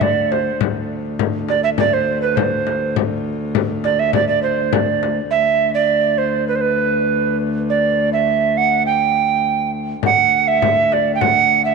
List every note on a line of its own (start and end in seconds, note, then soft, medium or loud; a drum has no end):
0.00 0.60 D2 medium
0.00 0.33 D5 medium
0.00 frame drum medium
0.32 0.60 C5 medium
0.32 frame drum medium
0.60 5.30 D2 medium
0.60 frame drum medium
1.19 frame drum medium
1.49 1.63 D5 medium
1.49 frame drum medium
1.64 1.70 E5 loud
1.78 1.95 D5 loud
1.78 frame drum medium
1.93 2.21 C5 medium
2.22 2.38 B4 medium
2.36 2.96 C5 medium
2.36 frame drum medium
2.67 frame drum medium
2.96 frame drum medium
3.55 frame drum medium
3.84 4.01 D5 medium
3.84 frame drum medium
3.99 4.13 E5 loud
4.13 4.28 D5 loud
4.13 frame drum medium
4.28 4.42 D5 medium
4.42 4.75 C5 medium
4.42 frame drum soft
4.73 5.18 D5 medium
4.73 frame drum medium
5.03 frame drum medium
5.30 10.04 D2 medium
5.30 5.73 E5 loud
5.74 6.19 D5 medium
6.18 6.47 C5 medium
6.48 6.57 B4 medium
6.55 6.62 C5 medium
6.61 7.37 B4 medium
7.70 8.10 D5 medium
8.13 8.59 E5 medium
8.57 8.85 F#5 medium
8.86 9.70 G5 loud
10.03 11.75 D2 medium
10.03 10.49 F#5 loud
10.03 frame drum medium
10.33 frame drum soft
10.48 10.95 E5 medium
10.62 frame drum medium
10.92 11.14 D5 medium
10.92 frame drum medium
11.15 11.22 G5 medium
11.21 11.64 F#5 loud
11.21 frame drum medium
11.51 frame drum soft
11.65 11.75 E5 medium